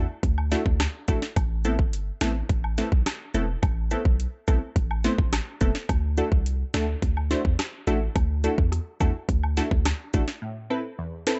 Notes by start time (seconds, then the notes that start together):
0.23 D2, kick, closed hi-hat
0.38 high woodblock
0.51 A3 D4 E4 F#4 A4, snare, closed hi-hat, cabasa
0.66 D2, kick
0.80 cross-stick, snare, closed hi-hat, high woodblock
1.08 A1 A3 D4 E4 F#4 A4, kick, closed hi-hat, cabasa
1.22 snare
1.36 A1, kick, closed hi-hat, high woodblock
1.64 A3 B3 C4 E4 A4, closed hi-hat, cabasa
1.79 G1, kick
1.93 closed hi-hat
2.21 A1 A3 B3 C4 E4 A4, snare, closed hi-hat, cabasa, high woodblock
2.49 A1, kick, closed hi-hat
2.64 high woodblock
2.78 A3 B3 C4 E4 A4, snare, closed hi-hat, cabasa
2.92 B1, kick
3.06 cross-stick, snare, closed hi-hat, high woodblock
3.34 E1 A3 B3 C4 E4 A4, closed hi-hat, cabasa
3.63 A1, kick, closed hi-hat, high woodblock
3.91 A3 B3 C4 E4 A4, closed hi-hat, cabasa
4.05 B1, kick
4.20 closed hi-hat
4.48 B1 A3 B3 C4 E4 A4, kick, closed hi-hat, cabasa, high woodblock
4.76 A1, kick, closed hi-hat
4.91 high woodblock
5.04 A3 B3 C4 E4 C5, snare, closed hi-hat, cabasa
5.18 A1, kick
5.33 cross-stick, snare, closed hi-hat, high woodblock
5.61 E1 A3 B3 C4 E4 A4, kick, closed hi-hat, cabasa
5.75 snare
5.89 D2, kick, closed hi-hat, high woodblock
6.17 A3 D4 E4 F#4 A4, closed hi-hat, cabasa
6.32 C2, kick
6.46 closed hi-hat
6.74 D2 A3 D4 E4 F#4 A4, snare, closed hi-hat, cabasa, high woodblock
7.02 D2, kick, closed hi-hat
7.17 high woodblock
7.30 A3 D4 E4 F#4 C5, snare, closed hi-hat, cabasa
7.45 E2, kick
7.59 cross-stick, snare, closed hi-hat, high woodblock
7.87 A1 A3 D4 E4 F#4 A4, closed hi-hat, cabasa
8.15 D2, kick, closed hi-hat, high woodblock
8.44 A3 D4 E4 F#4 A4, closed hi-hat, cabasa
8.58 E2, kick
8.72 cross-stick, closed hi-hat
9.00 E2 A3 D4 E4 F#4 A4, kick, closed hi-hat, cabasa, high woodblock
9.29 D2, kick, closed hi-hat
9.43 high woodblock
9.57 A3 D4 E4 F#4 A4, snare, closed hi-hat, cabasa
9.71 D2, kick
9.85 cross-stick, snare, closed hi-hat, high woodblock
10.14 A1 A3 D4 E4 F#4 A4, kick, closed hi-hat, cabasa
10.28 snare
10.42 A2
10.70 C4 E4 A4 B4
10.99 E2
11.27 C4 E4 A4 B4, snare